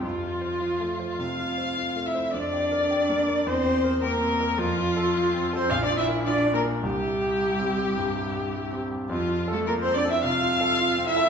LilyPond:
<<
  \new Staff \with { instrumentName = "Viola" } { \time 4/4 \key f \major \tempo 4 = 106 f'2 f''4. e''8 | d''2 c''4 bes'4 | f'4.~ f'16 c''16 f''16 d''16 e''8 d''8 bes'8 | g'2.~ g'8 r8 |
f'8. a'16 bes'16 c''16 d''16 e''16 f''4. e''8 | }
  \new Staff \with { instrumentName = "Violin" } { \time 4/4 \key f \major f'2 f''4. e''8 | d''2 c''4 bes'4 | f'4.~ f'16 c''16 f''16 d''16 e''8 d''8 bes'8 | g'2.~ g'8 r8 |
f'8. a'16 bes'16 c''16 d''16 e''16 f''4. e''8 | }
  \new Staff \with { instrumentName = "Grand piano" } { \time 4/4 \key f \major \tuplet 3/2 { f,8 f'8 c''8 f'8 a8 c''8 c8 f'8 c''8 f'8 a8 c''8 } | \tuplet 3/2 { f,8 g'8 bes'8 g'8 bes8 bes'8 e,8 g'8 bes'8 g'8 c'8 bes'8 } | \tuplet 3/2 { f,8 f'8 a'8 f'8 c'8 a'8 bes,,8 f'8 bes'8 f'8 d'8 bes'8 } | \tuplet 3/2 { c,8 e'8 g'8 e'8 c'8 g'8 g,8 e'8 g'8 e'8 c'8 g'8 } |
\tuplet 3/2 { f,8 f'8 a'8 f'8 c'8 a'8 c8 f'8 a'8 f'8 c'8 a'8 } | }
  \new Staff \with { instrumentName = "Cello" } { \time 4/4 \key f \major f2 f'4. e'8 | d'2 c'4 bes4 | f4.~ f16 c'16 f'16 d'16 e'8 d'8 bes8 | g2.~ g8 r8 |
f8. a16 bes16 c'16 d'16 e'16 f'4. e'8 | }
>>